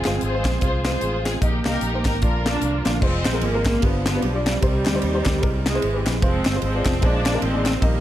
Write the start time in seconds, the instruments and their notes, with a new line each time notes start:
Already playing: tonewheel organ F3 G#3 C4 G#4, string section C4 F4 G#4
0.04 fingered electric bass G1, upright piano G#3 C4 F4 C5, snare, clap, closed hi-hat
0.21 fingered electric bass G#1, string section F4 G#4 C5, closed hi-hat
0.33 upright piano G#3 C4 F4 C5
0.45 fingered electric bass A#1, kick, snare, clap, closed hi-hat
0.61 fingered electric bass C2, upright piano G#3 C4 F4 C5, string section F4 G#4 C5, kick, closed hi-hat
0.85 upright piano G#3 C4 F4 C5, string section F4 G#4 C5, snare, clap, closed hi-hat
1.01 fingered electric bass A1, closed hi-hat
1.24 upright piano G#3 C4 F4 C5, string section G#4, snare, clap, closed hi-hat
1.41 fingered electric bass A#1, upright piano A#2 A#3 D#4 G4 D#5, tonewheel organ D#3 G3 A#3 G4, string section A#3 D#4 G4, kick, closed hi-hat
1.65 fingered electric bass C2, upright piano A#3 D#4 G4 F5, string section D#4 G4 A#4, snare, clap, closed hi-hat
1.81 fingered electric bass A#1, closed hi-hat
1.93 upright piano A#3 D#4 G4 C5
2.05 fingered electric bass G#1, string section A#4, kick, snare, clap, closed hi-hat
2.22 fingered electric bass A#1, upright piano A#2 A#3 D4 F4 D5, tonewheel organ D3 F3 A#3 F4, string section D4 F4 A#4, kick, closed hi-hat
2.45 string section F3 A#3 D4, upright piano A#3 D4 F4 A#4, snare, clap, closed hi-hat
2.62 fingered electric bass C2, closed hi-hat
2.85 fingered electric bass A#1, upright piano A#3 D4 F4 D5, snare, clap, closed hi-hat
3.01 fingered electric bass F1, string section F3 G#3 C4, upright piano G#3 C4 F4 C5, kick, crash
3.25 fingered electric bass A#1, snare, clap, ride
3.32 upright piano G#3 C4 F4 A#4
3.41 fingered electric bass G#1, string section A#3, ride
3.53 upright piano G#3 C4 F4 A#4
3.65 string section A#3, kick, snare, clap, ride
3.81 fingered electric bass G1, upright piano G2 G3 D4 F4 B4, string section D3 F3 B3, kick, ride
4.06 string section B3, snare, clap, ride
4.13 upright piano G3 D4 F4 B4
4.22 fingered electric bass B1, string section G3, ride
4.33 upright piano G3 D4 F4 D5
4.46 string section G3, snare, clap, ride
4.61 fingered electric bass C2, upright piano C3 G3 C4 D#4 C5, string section C3 D#3 G3, kick, ride
4.85 fingered electric bass D2, snare, clap, ride
4.93 upright piano G3 C4 D#4 C5
5.02 fingered electric bass D#2, ride
5.13 upright piano G3 C4 D#4 C5
5.25 fingered electric bass D2, kick, snare, clap, ride
5.41 fingered electric bass C2, upright piano C3 G#3 C4 E4 A#4, kick, ride
5.66 string section E3 G#3, snare, clap, ride
5.74 upright piano G#3 C4 E4 C5
5.82 fingered electric bass G#1, ride
5.93 upright piano G#3 C4 E4 G4
6.06 fingered electric bass A#1, snare, clap, ride
6.22 fingered electric bass F1, string section F3 G#3 C4, upright piano G#3 C4 F4 C5, kick, ride
6.45 fingered electric bass G1, snare, clap, ride
6.54 upright piano G#3 C4 F4 C5
6.62 fingered electric bass G#1, string section F3 G#3 C4, ride
6.74 upright piano G#3 C4 F4 D5
6.85 fingered electric bass F1, kick, snare, clap, ride
7.01 fingered electric bass A#1, upright piano A#2 A#3 D#4 G#4 C5, string section F3 G#3 D4, kick, ride
7.26 snare, clap, ride
7.33 upright piano A#3 D#4 G#4 A#4
7.42 fingered electric bass A1, string section D#3 G#3 C4, ride
7.53 upright piano A#3 D#4 G#4 D5
7.65 snare, clap, ride
7.82 fingered electric bass A#1, upright piano A#2 A#3 D#4 G4 D#5, string section D#3 G3 A#3, kick, ride